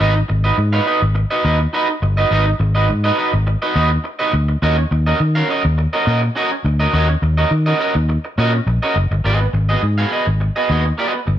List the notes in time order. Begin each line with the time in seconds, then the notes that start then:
0.00 G#1 D#4 F#4 B4 D#5
0.15 muted clean electric guitar stroke
0.28 G#1, muted clean electric guitar stroke
0.44 D#4 F#4 B4 D#5
0.58 G#2, muted clean electric guitar stroke
0.73 D#4 F#4 B4 F5
0.86 D#4 F#4 B4 D#5
1.02 G#1, muted clean electric guitar stroke
1.15 muted clean electric guitar stroke
1.31 D#4 F#4 B4 D#5
1.44 D#2 D#4 F#4 B4 D#5
1.60 muted clean electric guitar stroke
1.73 D#4 F#4 B4 D#5
1.89 muted clean electric guitar stroke
2.02 G1, muted clean electric guitar stroke
2.17 D#4 F#4 B4 D#5
2.31 G#1 D#4 F#4 B4 D#5
2.46 muted clean electric guitar stroke
2.60 G#1, muted clean electric guitar stroke
2.75 D#4 F#4 B4 D#5
2.89 G#2, muted clean electric guitar stroke
3.04 D#4 F#4 B4 D#5
3.18 D#4 F#4 B4 D#5
3.33 G#1, muted clean electric guitar stroke
3.47 muted clean electric guitar stroke
3.62 D#4 F#4 B4 D#5
3.75 D#2 D#4 F#4 B4 D#5
3.90 muted clean electric guitar stroke
4.04 muted clean electric guitar stroke
4.19 D#4 F#4 B4 D#5
4.33 D2, muted clean electric guitar stroke
4.49 muted clean electric guitar stroke
4.62 D#2 C#4 F#4 A#4 D#5
4.77 muted clean electric guitar stroke
4.91 D#2, muted clean electric guitar stroke
5.07 C#4 F#4 A#4 D#5
5.20 D#3, muted clean electric guitar stroke
5.35 C#4 F#4 A#4 F5
5.48 C#4 F#4 A#4 D#5
5.64 D#2, muted clean electric guitar stroke
5.78 muted clean electric guitar stroke
5.93 C#4 F#4 A#4 D#5
6.07 A#2 C#4 F#4 A#4 D#5
6.22 muted clean electric guitar stroke
6.36 C#4 F#4 A#4 D#5
6.51 muted clean electric guitar stroke
6.65 D2, muted clean electric guitar stroke
6.80 C#4 F#4 A#4 D#5
6.93 D#2 C#4 F#4 A#4 D#5
7.09 muted clean electric guitar stroke
7.22 D#2, muted clean electric guitar stroke
7.37 C#4 F#4 A#4 D#5
7.51 D#3, muted clean electric guitar stroke
7.66 C#4 F#4 A#4 D#5
7.79 C#4 F#4 A#4 D#5
7.95 D#2, muted clean electric guitar stroke
8.09 muted clean electric guitar stroke
8.25 muted clean electric guitar stroke
8.38 A#2 C#4 F#4 A#4 D#5
8.54 muted clean electric guitar stroke
8.67 A#1, muted clean electric guitar stroke
8.83 C#4 F#4 A#4 D#5
8.96 F#1, muted clean electric guitar stroke
9.11 G1, muted clean electric guitar stroke
9.24 G#1 B3 F#4 G#4 D#5
9.40 muted clean electric guitar stroke
9.53 G#1, muted clean electric guitar stroke
9.69 B3 F#4 G#4 D#5
9.83 G#2, muted clean electric guitar stroke
9.98 B3 F#4 G#4 F5
10.11 B3 F#4 G#4 D#5
10.27 G#1, muted clean electric guitar stroke
10.40 muted clean electric guitar stroke
10.56 B3 F#4 G#4 D#5
10.70 D#2 B3 F#4 G#4 D#5
10.85 muted clean electric guitar stroke
10.98 B3 F#4 G#4 D#5
11.13 muted clean electric guitar stroke
11.27 G1, muted clean electric guitar stroke